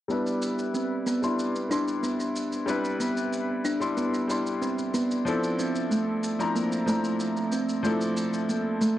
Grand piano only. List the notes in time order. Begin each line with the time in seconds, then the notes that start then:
0.08 G3 D4 E4 B4
1.22 G3 D4 E4 C6
1.69 G3 D4 E4 C6
2.66 G3 D4 E4 B4
3.80 G3 D4 E4 C6
4.28 G3 D4 E4 C6
5.25 F3 C4 D4 E4 A4
6.39 F3 C4 D4 E4 A#5
6.86 F3 C4 D4 E4 A#5
7.83 F3 C4 D4 E4 A4